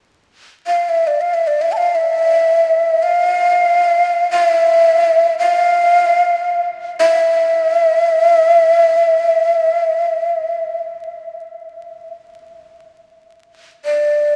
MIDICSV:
0, 0, Header, 1, 2, 480
1, 0, Start_track
1, 0, Tempo, 500000
1, 13784, End_track
2, 0, Start_track
2, 0, Title_t, "Shakuhachi"
2, 0, Program_c, 0, 77
2, 642, Note_on_c, 0, 77, 77
2, 854, Note_on_c, 0, 76, 77
2, 869, Note_off_c, 0, 77, 0
2, 1028, Note_on_c, 0, 74, 73
2, 1042, Note_off_c, 0, 76, 0
2, 1163, Note_on_c, 0, 77, 80
2, 1177, Note_off_c, 0, 74, 0
2, 1286, Note_on_c, 0, 76, 81
2, 1300, Note_off_c, 0, 77, 0
2, 1412, Note_on_c, 0, 74, 72
2, 1427, Note_off_c, 0, 76, 0
2, 1551, Note_on_c, 0, 76, 74
2, 1566, Note_off_c, 0, 74, 0
2, 1653, Note_on_c, 0, 81, 60
2, 1667, Note_off_c, 0, 76, 0
2, 1701, Note_on_c, 0, 77, 81
2, 1715, Note_off_c, 0, 81, 0
2, 1875, Note_on_c, 0, 76, 86
2, 1890, Note_off_c, 0, 77, 0
2, 2906, Note_on_c, 0, 77, 93
2, 2921, Note_off_c, 0, 76, 0
2, 4127, Note_off_c, 0, 77, 0
2, 4139, Note_on_c, 0, 77, 85
2, 4254, Note_off_c, 0, 77, 0
2, 4254, Note_on_c, 0, 76, 85
2, 5135, Note_off_c, 0, 76, 0
2, 5174, Note_on_c, 0, 77, 96
2, 6360, Note_off_c, 0, 77, 0
2, 6716, Note_on_c, 0, 76, 88
2, 10365, Note_off_c, 0, 76, 0
2, 13297, Note_on_c, 0, 74, 97
2, 13784, Note_off_c, 0, 74, 0
2, 13784, End_track
0, 0, End_of_file